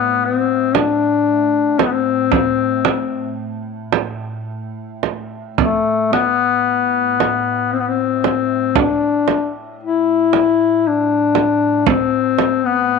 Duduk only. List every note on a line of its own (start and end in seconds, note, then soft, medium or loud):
0.00 0.27 B3 medium
0.25 0.78 C4 medium
0.76 1.81 D4 medium
1.79 1.87 C4 medium
1.85 1.93 B3 medium
1.92 3.38 C4 medium
5.58 6.09 A3 medium
6.12 7.74 B3 medium
7.73 7.81 C4 medium
7.79 7.90 B3 medium
7.88 8.80 C4 medium
8.78 9.55 D4 medium
9.83 10.89 E4 medium
10.88 11.90 D4 medium
11.89 12.67 C4 medium
12.66 12.99 B3 medium